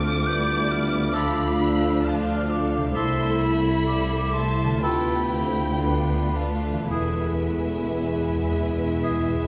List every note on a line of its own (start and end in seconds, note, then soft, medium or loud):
0.00 2.90 D2 medium
0.00 2.89 D3 medium
0.00 0.24 A3 medium
0.00 4.78 A3 medium
0.00 0.25 C4 medium
0.00 2.91 D4 soft
0.00 0.25 F4 medium
0.00 2.78 F4 medium
0.00 2.94 F4 soft
0.00 0.24 A4 medium
0.00 2.89 A4 soft
0.00 1.10 D6 loud
0.00 0.28 F6 medium
0.25 1.14 G3 medium
0.25 1.14 B3 medium
0.25 1.12 E4 medium
0.25 1.12 D5 medium
0.25 0.72 G6 medium
0.71 1.16 F6 medium
1.13 2.91 F3 medium
1.13 1.59 A3 medium
1.13 2.05 D4 medium
1.13 1.48 F4 medium
1.13 1.47 A4 medium
1.13 2.04 F5 medium
1.13 2.04 B5 loud
1.13 1.61 D6 medium
1.59 2.95 D4 medium
1.59 2.05 E6 medium
2.04 2.49 F4 medium
2.04 2.93 F5 medium
2.04 2.49 A5 medium
2.04 2.51 F6 medium
2.49 2.95 A4 medium
2.49 2.97 D6 medium
2.77 4.77 C3 medium
2.81 6.71 A3 soft
2.86 4.82 E4 soft
2.90 4.77 A4 soft
2.90 3.37 C6 medium
2.95 4.79 C2 medium
2.95 3.85 A3 medium
2.95 4.79 E4 medium
2.95 3.30 E4 medium
2.95 4.82 E4 medium
2.95 3.30 A4 medium
2.95 4.79 A4 medium
2.95 3.86 E5 medium
2.95 3.60 E6 medium
3.41 4.34 B5 loud
3.86 4.33 G3 medium
3.86 4.80 E5 medium
3.86 4.35 D6 medium
4.33 4.83 A3 medium
4.33 4.81 A5 medium
4.33 4.84 C6 medium
4.64 6.85 D3 medium
4.69 6.75 B3 soft
4.73 6.89 F4 soft
4.78 6.92 A4 soft
4.82 6.89 D2 medium
4.82 6.90 D2 medium
4.82 7.93 A3 medium
4.82 5.32 B3 medium
4.82 5.81 E4 medium
4.82 6.90 F4 medium
4.82 5.20 F4 medium
4.82 5.83 G4 medium
4.82 5.21 A4 medium
4.82 5.82 B4 soft
4.82 6.35 G5 medium
4.82 5.83 B5 medium
5.33 5.83 C4 medium
5.83 6.36 B3 medium
5.83 6.90 D4 soft
5.83 6.90 F4 soft
5.83 6.88 B4 soft
5.83 6.37 B5 medium
6.35 6.89 A3 medium
6.35 6.90 F5 medium
6.35 6.91 A5 soft
6.71 9.47 E3 soft
6.76 9.47 B3 soft
6.80 9.47 E4 soft
6.85 9.47 G#4 soft
6.89 9.47 E1 medium
6.89 9.47 E2 medium
6.89 6.98 E2 soft
6.89 9.47 G#3 soft
6.89 9.47 B3 soft
6.89 9.47 E4 medium
6.89 7.32 E4 soft
6.89 9.47 E4 medium
6.89 7.33 G#4 soft
6.89 9.47 B4 soft
6.89 9.47 E5 medium
6.89 9.47 G#5 medium
6.99 7.06 E2 soft
7.07 7.15 E2 soft
7.16 7.23 E2 soft
7.24 7.32 E2 soft
7.33 7.40 E2 soft
7.42 7.48 E2 soft
7.50 7.57 E2 soft
7.58 7.66 E2 soft
7.67 7.74 E2 soft
7.84 7.91 E2 soft
7.92 7.99 E2 soft
7.97 8.08 E2 soft
7.97 9.47 G#3 medium
8.09 8.17 E2 soft
8.18 8.25 E2 soft
8.27 8.34 E2 soft
8.35 8.41 E2 soft
8.42 8.50 E2 soft
8.51 8.59 E2 soft
8.60 8.67 E2 soft
8.69 8.76 E2 soft
8.77 8.84 E2 soft
8.85 8.93 E2 soft
8.94 9.01 E2 soft
9.02 9.09 E2 soft
9.02 9.43 E4 soft
9.02 9.43 G#4 medium
9.11 9.18 E2 soft
9.19 9.26 E2 soft
9.27 9.34 E2 soft
9.35 9.43 E2 medium